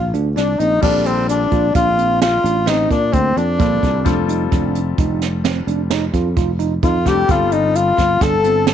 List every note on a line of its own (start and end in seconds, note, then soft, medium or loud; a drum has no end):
0.00 0.12 A#1 medium
0.00 0.18 F4 medium
0.14 0.35 D2 medium
0.14 0.27 D4 medium
0.14 closed hi-hat soft
0.35 0.58 C2 medium
0.35 0.61 D4 medium
0.35 0.50 D4 medium
0.35 0.60 D4 medium
0.35 snare soft
0.35 closed hi-hat medium
0.58 0.81 A#1 medium
0.58 0.73 C4 medium
0.58 0.81 D#4 medium
0.58 0.82 D#4 medium
0.58 closed hi-hat soft
0.81 1.45 A#1 medium
0.81 3.55 G3 medium
0.81 3.55 C4 medium
0.81 1.08 D4 medium
0.81 3.56 F4 medium
0.81 1.10 G4 medium
0.81 3.56 A4 medium
0.81 kick loud
0.81 crash medium
1.06 1.28 C4 medium
1.06 1.29 C4 medium
1.06 closed hi-hat medium
1.29 1.72 D4 medium
1.29 closed hi-hat medium
1.52 1.73 A#1 medium
1.52 1.65 F4 medium
1.52 kick medium
1.52 closed hi-hat medium
1.74 2.37 A#1 medium
1.74 1.88 D4 medium
1.74 2.18 F4 medium
1.74 2.19 F4 medium
1.74 kick medium
1.74 closed hi-hat medium
1.98 2.25 C4 medium
1.98 closed hi-hat medium
2.22 2.69 F4 loud
2.22 2.71 F4 medium
2.22 snare loud
2.22 closed hi-hat medium
2.44 2.86 A1 medium
2.44 2.57 D4 medium
2.44 closed hi-hat medium
2.66 2.93 C4 medium
2.66 2.91 D#4 medium
2.66 2.90 D#4 medium
2.66 snare loud
2.66 closed hi-hat medium
2.90 3.11 A#2 medium
2.90 3.15 D4 medium
2.90 kick medium
2.90 closed hi-hat medium
3.12 3.34 D2 medium
3.12 3.40 A#3 medium
3.12 3.40 C4 medium
3.12 3.39 C4 medium
3.12 kick loud
3.12 closed hi-hat medium
3.37 3.57 F2 medium
3.37 4.29 D4 medium
3.37 4.30 D4 medium
3.37 closed hi-hat medium
3.59 3.80 A#1 medium
3.59 4.03 G3 soft
3.59 3.86 A#3 medium
3.59 4.04 C4 soft
3.59 4.05 F4 soft
3.59 4.06 A4 soft
3.59 kick loud
3.59 closed hi-hat medium
3.83 4.04 C2 medium
3.83 kick medium
3.83 closed hi-hat medium
4.05 4.47 F1 medium
4.05 7.01 G3 medium
4.05 7.02 C4 medium
4.05 4.19 D4 medium
4.05 7.02 F4 medium
4.05 7.03 A4 medium
4.05 kick loud
4.05 closed hi-hat medium
4.29 4.42 D#4 medium
4.29 closed hi-hat medium
4.52 4.93 F1 medium
4.52 4.79 D4 medium
4.52 kick medium
4.52 snare soft
4.52 closed hi-hat medium
4.75 closed hi-hat medium
4.98 5.60 F1 medium
4.98 5.25 D#4 medium
4.98 kick medium
4.98 closed hi-hat medium
5.22 snare soft
5.22 closed hi-hat medium
5.44 5.58 C4 medium
5.44 snare loud
5.44 closed hi-hat medium
5.67 6.09 F1 medium
5.67 5.81 D4 medium
5.67 closed hi-hat medium
5.90 6.04 D#4 medium
5.90 snare loud
5.90 closed hi-hat medium
6.14 6.34 F2 medium
6.14 6.27 F4 medium
6.14 kick medium
6.14 closed hi-hat medium
6.37 6.78 F1 medium
6.37 6.50 F4 medium
6.37 kick medium
6.37 closed hi-hat medium
6.59 6.73 D#4 medium
6.59 closed hi-hat medium
6.83 7.04 F2 medium
6.83 6.96 D#4 medium
6.83 7.09 F4 medium
6.83 7.10 F4 medium
6.83 kick loud
6.83 closed hi-hat medium
7.05 7.27 F1 medium
7.05 7.27 G3 soft
7.05 7.28 C4 soft
7.05 7.19 D4 medium
7.05 7.29 F4 soft
7.05 7.32 G4 medium
7.05 7.33 G4 loud
7.05 7.29 A4 soft
7.05 kick medium
7.05 snare soft
7.05 closed hi-hat medium
7.28 7.91 G1 medium
7.28 8.74 G3 medium
7.28 8.74 C4 medium
7.28 8.74 F4 medium
7.28 7.54 F4 medium
7.28 7.56 G4 medium
7.28 8.74 A4 medium
7.28 kick loud
7.28 closed hi-hat medium
7.52 7.77 D#4 medium
7.52 7.78 D#4 medium
7.52 closed hi-hat medium
7.75 8.25 F4 medium
7.75 8.24 F4 medium
7.75 closed hi-hat medium
7.97 8.19 G1 medium
7.97 8.11 F4 medium
7.97 kick medium
7.97 snare soft
7.97 closed hi-hat medium
8.21 8.74 G1 medium
8.21 8.34 D4 medium
8.21 8.67 A4 loud
8.21 8.69 A4 medium
8.21 kick medium
8.21 snare soft
8.21 closed hi-hat medium
8.44 8.71 C4 medium
8.44 closed hi-hat medium
8.67 8.74 A4 loud
8.67 8.74 A4 medium
8.67 snare loud
8.67 closed hi-hat medium